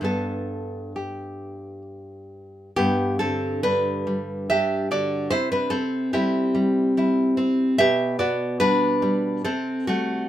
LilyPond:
\new Staff \with { instrumentName = "Nylon-string guitar" } { \time 3/4 \key g \major \tempo 4 = 70 << { a'4 g'4 r4 | <b g'>8 <c' a'>8 <d' b'>4 <g' e''>8 <fis' d''>8 | <e' c''>16 <d' b'>16 <c' a'>8 <c' g'>4. r8 | <g' e''>8 <fis' d''>8 <d' b'>4 <c' a'>8 <a fis'>8 | } \\ { <g, b d'>2. | g,8 d8 g8 g8 <g d'>8 d8 | c4 <g e'>8 g8 <g e'>8 c'8 | b,8 b8 g8 g8 c8 g8 | } >> }